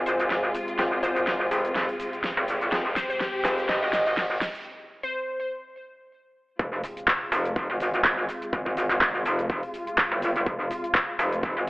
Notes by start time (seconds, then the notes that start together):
Already playing: G#1 C3 G#3 F4, riser
0.06 C5, open hi-hat, shaker
0.20 closed hi-hat, shaker
0.30 G#1, snare, closed hi-hat, shaker
0.55 open hi-hat, shaker
0.68 closed hi-hat, shaker
0.79 G#1 C4 F4 G#4, snare, closed hi-hat, shaker
1.03 C5, open hi-hat, shaker
1.16 closed hi-hat, shaker
1.27 G#1, snare, closed hi-hat, shaker
1.51 F1 C4 F4 G#4, open hi-hat, shaker
1.65 closed hi-hat, shaker
1.75 snare, closed hi-hat, shaker
1.89 open hi-hat
2.00 open hi-hat, shaker
2.13 closed hi-hat, shaker
2.24 snare, closed hi-hat, shaker
2.37 G1
2.48 open hi-hat, shaker
2.61 closed hi-hat, shaker
2.72 F1 C4 F4 G4 G#4, snare, closed hi-hat, shaker
2.96 C5, snare, open hi-hat, shaker
3.10 C5, closed hi-hat, shaker
3.21 snare, closed hi-hat, shaker
3.45 F1 C4 F4 G#4 C5, snare, open hi-hat, shaker
3.58 closed hi-hat, shaker
3.69 D#5, snare, closed hi-hat, shaker
3.82 G#1 D#5
3.93 D#5, snare, open hi-hat, shaker
4.06 D#5, closed hi-hat, shaker
4.17 G#1, snare, closed hi-hat, shaker
4.41 snare, open hi-hat, shaker
4.55 closed hi-hat, shaker
5.03 C5
6.59 F1 C3 G#3 F4, kick, closed hi-hat, impact, shaker
6.84 open hi-hat, shaker
6.97 closed hi-hat, shaker
7.08 kick, clap, closed hi-hat, shaker
7.32 F1, open hi-hat, shaker
7.45 closed hi-hat, shaker
7.56 kick, closed hi-hat, shaker
7.70 G#1
7.80 open hi-hat, shaker
7.94 closed hi-hat, shaker
8.05 G#1, kick, clap, closed hi-hat, shaker
8.29 open hi-hat, shaker
8.42 closed hi-hat, shaker
8.53 G#1, kick, closed hi-hat, shaker
8.66 kick
8.77 open hi-hat, shaker
8.90 clap, closed hi-hat, shaker
9.01 G#1, kick, clap, closed hi-hat, shaker
9.25 F1, open hi-hat, shaker
9.39 closed hi-hat, shaker
9.50 kick, closed hi-hat, shaker
9.63 open hi-hat
9.74 open hi-hat, shaker
9.87 closed hi-hat, shaker
9.98 kick, clap, closed hi-hat, shaker
10.12 G1
10.22 open hi-hat, shaker
10.36 closed hi-hat, shaker
10.46 F1, kick, closed hi-hat, shaker
10.71 open hi-hat, shaker
10.84 closed hi-hat, shaker
10.95 kick, clap, closed hi-hat, shaker
11.19 F1, open hi-hat, shaker
11.32 closed hi-hat, shaker
11.43 kick, closed hi-hat, shaker
11.57 G#1